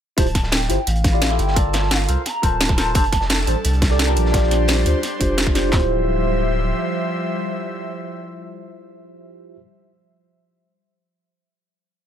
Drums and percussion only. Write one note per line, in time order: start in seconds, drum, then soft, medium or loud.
0.18 kick loud
0.18 closed hi-hat loud
0.18 closed hi-hat medium
0.35 kick medium
0.35 snare medium
0.35 closed hi-hat medium
0.43 snare soft
0.52 snare loud
0.52 closed hi-hat medium
0.62 snare medium
0.70 closed hi-hat medium
0.87 closed hi-hat loud
0.87 closed hi-hat medium
0.96 closed hi-hat soft
1.04 kick loud
1.04 snare soft
1.04 closed hi-hat medium
1.22 snare loud
1.22 closed hi-hat loud
1.22 closed hi-hat medium
1.31 snare soft
1.39 closed hi-hat medium
1.48 snare medium
1.56 kick loud
1.56 closed hi-hat medium
1.73 snare loud
1.73 snare medium
1.73 closed hi-hat medium
1.82 snare soft
1.91 snare loud
1.91 closed hi-hat medium
2.09 closed hi-hat medium
2.26 snare soft
2.26 closed hi-hat medium
2.26 closed hi-hat loud
2.43 kick medium
2.43 closed hi-hat medium
2.61 snare loud
2.61 closed hi-hat loud
2.61 closed hi-hat medium
2.69 kick loud
2.69 snare soft
2.78 snare soft
2.78 snare medium
2.78 closed hi-hat medium
2.95 kick loud
2.95 closed hi-hat loud
2.95 closed hi-hat medium
3.04 closed hi-hat soft
3.12 kick medium
3.12 snare medium
3.12 closed hi-hat medium
3.21 snare soft
3.30 snare loud
3.30 closed hi-hat medium
3.39 snare medium
3.47 closed hi-hat medium
3.64 closed hi-hat medium
3.64 closed hi-hat loud
3.73 closed hi-hat soft
3.82 kick loud
3.82 snare loud
3.82 snare soft
3.82 closed hi-hat medium
3.91 snare soft
3.99 snare loud
3.99 closed hi-hat medium
4.08 snare soft
4.16 closed hi-hat medium
4.25 snare soft
4.34 kick loud
4.34 snare loud
4.34 closed hi-hat medium
4.43 snare soft
4.51 snare medium
4.51 closed hi-hat medium
4.68 snare loud
4.68 closed hi-hat medium
4.86 closed hi-hat medium
5.03 snare soft
5.03 closed hi-hat medium
5.21 kick medium
5.21 closed hi-hat medium
5.38 snare loud
5.38 closed hi-hat medium
5.47 kick loud
5.47 snare soft
5.55 snare soft
5.55 snare medium
5.55 closed hi-hat medium
5.73 kick loud
5.73 snare loud
5.73 clap medium